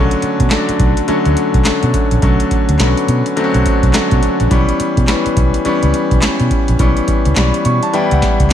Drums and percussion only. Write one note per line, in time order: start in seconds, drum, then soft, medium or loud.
0.11 closed hi-hat medium
0.22 closed hi-hat medium
0.40 kick medium
0.40 closed hi-hat soft
0.51 snare loud
0.51 clap medium
0.51 closed hi-hat medium
0.69 closed hi-hat medium
0.79 kick medium
0.79 closed hi-hat medium
0.97 closed hi-hat medium
1.08 closed hi-hat medium
1.25 closed hi-hat soft
1.37 closed hi-hat medium
1.54 kick medium
1.54 closed hi-hat soft
1.65 snare loud
1.65 clap medium
1.65 closed hi-hat medium
1.83 closed hi-hat medium
1.93 kick medium
1.93 closed hi-hat medium
2.11 closed hi-hat medium
2.22 kick loud
2.22 closed hi-hat medium
2.40 closed hi-hat soft
2.51 kick medium
2.51 closed hi-hat medium
2.69 closed hi-hat medium
2.79 snare loud
2.79 clap medium
2.79 closed hi-hat medium
2.97 closed hi-hat medium
3.08 closed hi-hat medium
3.26 closed hi-hat medium
3.37 closed hi-hat medium
3.54 closed hi-hat soft
3.66 kick medium
3.66 closed hi-hat medium
3.83 kick medium
3.83 closed hi-hat soft
3.94 snare loud
3.94 clap loud
3.94 closed hi-hat medium
4.11 kick medium
4.11 closed hi-hat soft
4.23 closed hi-hat medium
4.40 closed hi-hat medium
4.51 kick loud
4.51 closed hi-hat medium
4.69 closed hi-hat medium
4.80 closed hi-hat medium
4.97 kick medium
4.97 closed hi-hat medium
5.08 snare medium
5.08 clap medium
5.08 closed hi-hat medium
5.26 closed hi-hat medium
5.37 kick loud
5.37 closed hi-hat medium
5.54 closed hi-hat medium
5.65 closed hi-hat medium
5.83 closed hi-hat soft
5.94 closed hi-hat medium
6.11 kick medium
6.11 closed hi-hat soft
6.22 snare loud
6.22 clap medium
6.22 closed hi-hat medium
6.40 closed hi-hat soft
6.50 kick medium
6.50 closed hi-hat medium
6.68 closed hi-hat medium
6.79 kick loud
6.79 closed hi-hat medium
6.97 closed hi-hat soft
7.08 kick medium
7.08 closed hi-hat medium
7.25 closed hi-hat medium
7.36 snare loud
7.36 clap medium
7.36 closed hi-hat medium
7.54 closed hi-hat medium
7.65 closed hi-hat medium
7.83 closed hi-hat medium
7.94 closed hi-hat medium
8.11 closed hi-hat soft
8.22 kick medium
8.22 snare medium
8.22 closed hi-hat medium
8.40 kick medium
8.40 closed hi-hat soft